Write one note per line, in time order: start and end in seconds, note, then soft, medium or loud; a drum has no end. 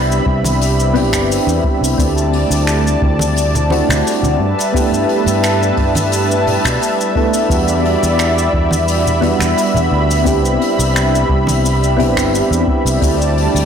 0.00 0.19 C2 medium
0.00 4.36 G3 medium
0.00 0.90 B3 medium
0.00 0.91 C4 medium
0.00 0.91 D4 medium
0.00 0.91 E4 medium
0.00 0.92 G4 medium
0.00 1.95 E5 medium
0.00 1.95 B5 medium
0.12 cabasa soft
0.26 1.13 C2 medium
0.26 kick loud
0.44 open hi-hat medium
0.44 high conga medium
0.44 cabasa medium
0.61 open hi-hat medium
0.61 cabasa medium
0.80 cabasa soft
0.94 1.94 B3 medium
0.94 1.94 C4 medium
0.94 1.95 D4 medium
0.94 1.95 E4 medium
0.94 1.96 G4 loud
0.94 open hi-hat medium
0.94 low conga medium
1.13 1.38 G1 medium
1.13 finger snap medium
1.13 kick medium
1.13 open hi-hat medium
1.13 cabasa medium
1.31 open hi-hat medium
1.31 cabasa medium
1.47 1.59 E2 medium
1.47 cabasa medium
1.64 kick loud
1.81 1.94 C2 medium
1.81 open hi-hat medium
1.81 cabasa medium
1.97 2.43 D2 loud
1.97 3.66 A3 medium
1.97 3.67 C4 medium
1.97 3.67 D4 medium
1.97 3.68 E4 medium
1.97 3.68 G4 medium
1.97 4.38 D5 medium
1.97 4.38 A5 medium
1.97 kick loud
1.97 open hi-hat medium
1.97 cabasa medium
2.18 cabasa soft
2.33 open hi-hat soft
2.51 2.95 D2 medium
2.51 open hi-hat medium
2.51 cabasa medium
2.67 finger snap medium
2.67 open hi-hat medium
2.67 cabasa medium
2.87 cabasa soft
3.02 3.81 D2 medium
3.02 kick loud
3.19 open hi-hat medium
3.19 high conga medium
3.19 cabasa medium
3.36 open hi-hat medium
3.36 cabasa medium
3.55 low conga medium
3.55 cabasa soft
3.70 4.38 A3 medium
3.70 4.38 C4 medium
3.70 4.38 D4 medium
3.70 4.38 E4 medium
3.70 4.38 F#4 medium
3.70 open hi-hat medium
3.70 high conga medium
3.89 4.01 D2 medium
3.89 finger snap medium
3.89 open hi-hat medium
3.89 low conga medium
3.89 cabasa medium
4.07 open hi-hat medium
4.07 cabasa medium
4.23 4.35 D2 medium
4.23 low conga medium
4.23 cabasa soft
4.39 4.53 G2 medium
4.39 10.23 G3 medium
4.39 7.48 B4 medium
4.39 12.98 E5 medium
4.39 7.48 A5 medium
4.58 open hi-hat medium
4.58 cabasa medium
4.72 6.42 A3 medium
4.72 6.42 B3 medium
4.72 6.43 D4 medium
4.72 6.43 E4 medium
4.72 6.44 G4 medium
4.72 kick loud
4.72 open hi-hat medium
4.77 cabasa medium
4.92 5.04 G2 medium
4.92 cabasa soft
5.09 open hi-hat soft
5.26 5.71 G2 medium
5.26 open hi-hat medium
5.26 cabasa medium
5.43 finger snap medium
5.43 open hi-hat medium
5.43 cabasa medium
5.63 cabasa soft
5.77 6.57 G2 medium
5.77 kick loud
5.77 open hi-hat soft
5.95 open hi-hat medium
5.95 high conga medium
5.95 cabasa medium
6.12 open hi-hat medium
6.12 cabasa medium
6.31 cabasa soft
6.47 open hi-hat medium
6.47 low conga medium
6.64 6.77 B2 medium
6.64 finger snap medium
6.64 kick medium
6.64 open hi-hat medium
6.64 cabasa medium
6.81 open hi-hat medium
6.81 cabasa medium
7.01 cabasa soft
7.16 7.46 A3 medium
7.16 7.46 B3 medium
7.16 7.46 D4 medium
7.16 7.47 E4 medium
7.16 7.47 A4 medium
7.16 kick loud
7.16 open hi-hat soft
7.33 open hi-hat medium
7.33 cabasa medium
7.49 7.95 E2 loud
7.49 9.18 G3 medium
7.49 9.18 B3 medium
7.49 9.19 D4 medium
7.49 9.19 E4 medium
7.49 9.19 F#4 medium
7.49 10.23 D5 medium
7.49 12.98 B5 medium
7.49 kick loud
7.49 open hi-hat medium
7.49 cabasa medium
7.68 cabasa soft
7.85 open hi-hat soft
8.03 8.47 E2 medium
8.03 open hi-hat medium
8.03 cabasa medium
8.19 finger snap medium
8.19 open hi-hat medium
8.19 cabasa medium
8.38 cabasa medium
8.53 9.33 E2 medium
8.53 kick loud
8.71 open hi-hat medium
8.71 high conga medium
8.71 cabasa medium
8.88 open hi-hat medium
8.88 cabasa medium
9.06 low conga medium
9.06 cabasa soft
9.20 10.21 G3 medium
9.20 10.21 B3 medium
9.20 10.22 D4 medium
9.20 10.22 E4 medium
9.20 10.23 F#4 medium
9.20 open hi-hat medium
9.20 high conga medium
9.39 9.53 E2 medium
9.39 finger snap medium
9.39 open hi-hat medium
9.39 low conga medium
9.39 cabasa medium
9.57 open hi-hat medium
9.57 cabasa medium
9.74 9.88 E2 medium
9.74 low conga medium
9.74 cabasa soft
9.92 10.44 D2 medium
10.10 open hi-hat medium
10.10 cabasa medium
10.24 13.65 G3 medium
10.24 11.93 B3 medium
10.24 11.94 C4 medium
10.24 11.94 D4 medium
10.24 11.95 E4 medium
10.24 11.95 G4 medium
10.24 kick loud
10.24 open hi-hat medium
10.24 cabasa medium
10.44 10.56 C2 medium
10.44 cabasa soft
10.61 open hi-hat soft
10.79 11.23 C2 medium
10.79 open hi-hat medium
10.79 cabasa medium
10.96 finger snap medium
10.96 open hi-hat medium
10.96 cabasa medium
11.15 cabasa medium
11.29 12.17 C2 medium
11.29 kick loud
11.47 open hi-hat medium
11.47 high conga medium
11.47 cabasa medium
11.65 open hi-hat medium
11.65 cabasa medium
11.84 cabasa soft
11.96 12.97 B3 medium
11.96 12.97 C4 medium
11.96 12.98 D4 medium
11.96 12.98 E4 medium
11.96 12.98 G4 loud
11.96 open hi-hat medium
11.96 low conga medium
12.17 12.41 G1 medium
12.17 finger snap medium
12.17 kick medium
12.17 open hi-hat medium
12.17 cabasa medium
12.34 open hi-hat medium
12.34 cabasa medium
12.51 12.63 E2 medium
12.51 cabasa medium
12.68 kick loud
12.85 12.97 C2 medium
12.85 open hi-hat medium
12.85 cabasa medium
13.00 13.47 D2 loud
13.00 13.65 A3 medium
13.00 13.65 C4 medium
13.00 13.65 D4 medium
13.00 13.65 E4 medium
13.00 13.65 G4 medium
13.00 13.65 D5 medium
13.00 13.65 A5 medium
13.00 kick loud
13.00 open hi-hat medium
13.00 cabasa medium
13.22 cabasa soft
13.38 open hi-hat soft
13.55 13.65 D2 medium
13.55 open hi-hat medium
13.55 cabasa medium